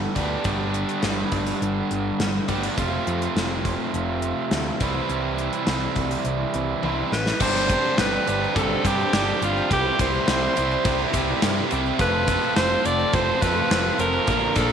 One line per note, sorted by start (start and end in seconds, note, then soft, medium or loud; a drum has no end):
0.00 0.13 G2 medium
0.00 0.14 D3 medium
0.00 0.14 G3 medium
0.00 0.14 B3 medium
0.00 0.15 D4 medium
0.00 0.14 G4 medium
0.15 0.35 D2 medium
0.15 0.43 G2 medium
0.15 0.44 D3 medium
0.15 0.44 G3 medium
0.15 0.43 B3 medium
0.15 0.43 D4 medium
0.15 0.43 G4 medium
0.15 kick medium
0.15 closed hi-hat medium
0.44 0.83 G1 medium
0.44 2.46 G2 medium
0.44 2.47 D3 medium
0.44 2.47 G3 medium
0.44 2.47 B3 medium
0.44 2.48 D4 medium
0.44 2.47 G4 loud
0.44 kick loud
0.44 closed hi-hat medium
0.74 closed hi-hat medium
0.89 closed hi-hat medium
1.03 1.22 G1 loud
1.03 snare medium
1.03 closed hi-hat medium
1.32 1.52 G1 medium
1.32 kick medium
1.32 closed hi-hat medium
1.47 closed hi-hat medium
1.62 1.81 G1 medium
1.62 closed hi-hat medium
1.91 2.10 G1 medium
1.91 closed hi-hat medium
2.19 2.39 G1 medium
2.19 snare loud
2.19 closed hi-hat medium
2.48 2.68 G1 medium
2.48 2.76 G2 medium
2.48 2.77 D3 medium
2.48 2.77 G3 medium
2.48 2.76 B3 medium
2.48 2.76 D4 medium
2.48 2.76 G4 medium
2.48 kick medium
2.48 closed hi-hat medium
2.63 closed hi-hat medium
2.77 2.97 F1 medium
2.77 4.78 F2 medium
2.77 4.79 C3 medium
2.77 4.79 F3 medium
2.77 4.79 A3 medium
2.77 4.82 C4 medium
2.77 4.80 F4 medium
2.77 kick medium
2.77 closed hi-hat medium
3.07 3.26 F2 medium
3.07 closed hi-hat medium
3.22 closed hi-hat medium
3.36 3.74 F1 medium
3.36 snare loud
3.36 closed hi-hat medium
3.65 kick medium
3.65 closed hi-hat medium
3.94 4.32 F1 medium
3.94 closed hi-hat medium
4.22 closed hi-hat medium
4.51 4.71 D2 medium
4.51 snare loud
4.51 closed hi-hat medium
4.80 5.00 C2 medium
4.80 6.81 C3 medium
4.80 6.81 E3 medium
4.80 6.82 G3 medium
4.80 6.82 C4 medium
4.80 6.82 E4 loud
4.80 kick loud
4.80 closed hi-hat medium
5.09 5.48 C2 medium
5.09 closed hi-hat medium
5.38 closed hi-hat medium
5.53 closed hi-hat medium
5.67 5.86 C2 loud
5.67 snare loud
5.67 closed hi-hat medium
5.96 6.15 C2 medium
5.96 kick medium
5.96 closed hi-hat medium
6.11 closed hi-hat medium
6.25 6.44 C2 medium
6.25 closed hi-hat medium
6.54 6.73 C2 medium
6.54 closed hi-hat medium
6.82 7.02 C2 medium
6.82 7.10 C3 medium
6.82 7.10 E3 medium
6.82 7.10 G3 medium
6.82 7.11 C4 medium
6.82 7.11 E4 medium
6.82 high tom medium
7.12 7.31 A1 medium
7.12 7.44 B4 loud
7.12 snare medium
7.26 snare medium
7.40 7.77 G1 loud
7.40 7.68 G2 loud
7.40 7.68 D3 loud
7.40 7.69 G3 loud
7.40 7.69 C4 loud
7.40 9.69 C4 medium
7.40 7.69 D4 loud
7.40 9.69 D4 medium
7.40 7.70 G4 loud
7.40 9.69 G4 medium
7.40 7.99 C5 loud
7.40 9.69 D5 medium
7.40 kick medium
7.40 crash loud
7.40 shaker medium
7.56 snare soft
7.69 7.96 G2 medium
7.69 7.97 D3 medium
7.69 7.97 G3 medium
7.69 7.98 C4 medium
7.69 7.97 D4 medium
7.69 7.98 G4 medium
7.69 kick loud
7.69 ride medium
7.69 shaker loud
7.85 shaker soft
7.97 8.17 G1 loud
7.97 8.26 G2 medium
7.97 8.26 D3 loud
7.97 8.26 G3 medium
7.97 8.26 C4 medium
7.97 8.26 D4 medium
7.97 8.27 G4 loud
7.97 8.59 B4 loud
7.97 snare loud
7.97 ride loud
7.97 shaker medium
8.26 8.46 G1 medium
8.26 8.54 G2 loud
8.26 8.55 D3 loud
8.26 8.54 G3 medium
8.26 8.55 C4 medium
8.26 8.55 D4 medium
8.26 8.55 G4 medium
8.26 ride medium
8.26 shaker medium
8.43 shaker soft
8.55 8.74 G1 loud
8.55 8.83 G2 medium
8.55 8.84 D3 medium
8.55 8.83 G3 medium
8.55 8.84 C4 loud
8.55 8.84 D4 medium
8.55 8.84 G4 loud
8.55 8.88 A4 medium
8.55 kick loud
8.55 ride medium
8.55 shaker medium
8.84 9.12 G2 medium
8.84 9.03 G2 medium
8.84 9.12 D3 medium
8.84 9.11 G3 medium
8.84 9.13 C4 medium
8.84 9.12 D4 medium
8.84 9.13 G4 loud
8.84 9.43 G4 loud
8.84 kick medium
8.84 ride medium
8.84 shaker loud
9.00 shaker soft
9.13 9.31 G1 medium
9.13 9.40 G2 medium
9.13 9.41 D3 loud
9.13 9.40 G3 medium
9.13 9.41 C4 loud
9.13 9.41 D4 loud
9.13 9.41 G4 loud
9.13 snare loud
9.13 ride loud
9.13 shaker medium
9.41 9.60 G1 medium
9.41 9.69 G2 medium
9.41 9.69 D3 medium
9.41 9.68 G3 medium
9.41 9.71 C4 medium
9.41 9.69 D4 loud
9.41 9.70 F4 medium
9.41 9.69 G4 loud
9.41 ride medium
9.41 shaker medium
9.57 shaker soft
9.71 9.89 C2 medium
9.71 9.97 C3 medium
9.71 9.98 G3 loud
9.71 11.98 C4 medium
9.71 9.99 C4 loud
9.71 9.99 E4 loud
9.71 11.98 E4 medium
9.71 11.98 G4 medium
9.71 9.99 G4 loud
9.71 11.98 C5 medium
9.71 kick medium
9.71 ride loud
9.71 shaker medium
9.99 10.18 C2 medium
9.99 10.26 C3 medium
9.99 10.27 G3 medium
9.99 10.28 C4 medium
9.99 10.28 E4 loud
9.99 10.28 G4 loud
9.99 11.11 C5 medium
9.99 kick loud
9.99 ride medium
9.99 shaker loud
10.15 shaker soft
10.28 10.46 C2 loud
10.28 10.55 C3 loud
10.28 10.55 G3 loud
10.28 10.57 C4 loud
10.28 10.56 E4 loud
10.28 10.57 G4 loud
10.28 snare loud
10.28 ride loud
10.28 shaker medium
10.56 10.76 C2 medium
10.56 10.83 C3 medium
10.56 10.83 G3 medium
10.56 10.84 C4 medium
10.56 10.84 E4 loud
10.56 10.85 G4 medium
10.56 ride medium
10.56 shaker medium
10.71 shaker soft
10.84 11.04 C2 loud
10.84 11.11 C3 loud
10.84 11.12 G3 medium
10.84 11.12 C4 medium
10.84 11.13 E4 loud
10.84 11.13 G4 loud
10.84 kick loud
10.84 ride loud
10.84 shaker medium
11.13 11.32 C2 medium
11.13 11.40 C3 medium
11.13 11.41 G3 medium
11.13 11.42 C4 medium
11.13 11.42 E4 medium
11.13 11.42 G4 medium
11.13 kick medium
11.13 ride medium
11.13 shaker loud
11.29 shaker soft
11.41 11.61 G2 medium
11.41 11.70 C3 medium
11.41 11.70 G3 loud
11.41 11.70 C4 medium
11.41 11.71 E4 medium
11.41 11.71 G4 loud
11.41 snare loud
11.41 ride loud
11.41 shaker medium
11.71 11.90 C2 loud
11.71 11.98 C3 medium
11.71 11.98 G3 medium
11.71 11.98 C4 medium
11.71 11.98 E4 loud
11.71 11.99 G4 loud
11.71 ride medium
11.71 shaker medium
11.86 shaker soft
11.99 12.36 F1 loud
11.99 12.26 F2 loud
11.99 12.26 C3 loud
11.99 12.28 F3 loud
11.99 14.26 A3 medium
11.99 12.27 A3 loud
11.99 12.27 C4 loud
11.99 14.26 C4 medium
11.99 14.26 F4 medium
11.99 12.28 F4 loud
11.99 14.26 A4 medium
11.99 12.28 A4 loud
11.99 12.54 B4 loud
11.99 kick loud
11.99 ride medium
11.99 shaker medium
12.27 12.56 F2 medium
12.27 12.56 C3 medium
12.27 12.56 F3 medium
12.27 12.56 A3 loud
12.27 12.56 C4 medium
12.27 12.57 F4 medium
12.27 12.57 A4 loud
12.27 kick loud
12.27 ride medium
12.27 shaker medium
12.42 shaker soft
12.56 12.75 F1 loud
12.56 12.83 F2 loud
12.56 12.84 C3 medium
12.56 12.85 F3 medium
12.56 12.84 A3 loud
12.56 12.84 C4 loud
12.56 12.86 F4 loud
12.56 12.85 A4 loud
12.56 12.87 C5 loud
12.56 snare loud
12.56 ride medium
12.56 shaker medium
12.85 13.04 F1 loud
12.85 13.12 F2 medium
12.85 13.13 C3 loud
12.85 13.12 F3 medium
12.85 13.13 A3 medium
12.85 13.13 C4 medium
12.85 13.13 F4 medium
12.85 13.13 A4 loud
12.85 13.16 D5 loud
12.85 ride medium
12.85 shaker medium
12.99 shaker soft
13.13 13.32 F1 loud
13.13 13.40 F2 medium
13.13 13.41 C3 loud
13.13 13.42 F3 medium
13.13 13.41 A3 loud
13.13 13.42 C4 medium
13.13 13.43 F4 medium
13.13 13.43 A4 loud
13.13 13.44 C5 loud
13.13 kick loud
13.13 ride loud
13.13 shaker medium
13.42 13.69 F2 medium
13.42 13.61 F2 loud
13.42 13.69 C3 loud
13.42 13.70 F3 medium
13.42 13.70 A3 loud
13.42 13.71 C4 medium
13.42 13.71 F4 medium
13.42 13.72 A4 medium
13.42 14.00 B4 loud
13.42 kick medium
13.42 ride medium
13.42 shaker medium
13.56 shaker soft
13.70 13.89 F1 medium
13.70 13.98 F2 loud
13.70 13.98 C3 medium
13.70 13.98 F3 medium
13.70 13.99 A3 medium
13.70 13.99 C4 loud
13.70 13.99 F4 loud
13.70 14.00 A4 loud
13.70 snare loud
13.70 ride loud
13.70 shaker medium
13.99 14.18 F1 medium
13.99 14.26 F2 medium
13.99 14.26 C3 medium
13.99 14.26 F3 medium
13.99 14.27 A3 loud
13.99 14.27 C4 medium
13.99 14.27 F4 medium
13.99 14.27 A4 medium
13.99 14.58 A#4 medium
13.99 ride medium
13.99 shaker medium
14.13 shaker soft
14.27 14.46 A#1 loud
14.27 14.55 A#2 loud
14.27 14.56 D3 loud
14.27 14.56 F3 loud
14.27 14.57 A#3 loud
14.27 14.48 B3 medium
14.27 14.58 D4 loud
14.27 14.47 D#4 medium
14.27 14.47 F#4 medium
14.27 14.58 A#4 loud
14.27 kick loud
14.27 ride medium
14.27 shaker medium
14.48 14.72 A#3 medium
14.48 14.72 D4 loud
14.48 14.72 F4 medium
14.56 14.72 A#1 medium
14.56 14.72 A#2 medium
14.56 14.72 D3 medium
14.56 14.72 F3 medium
14.56 14.72 A#3 medium
14.56 14.72 D4 loud
14.56 14.72 A4 loud
14.56 14.72 A#4 loud
14.56 kick medium
14.56 ride medium
14.56 shaker medium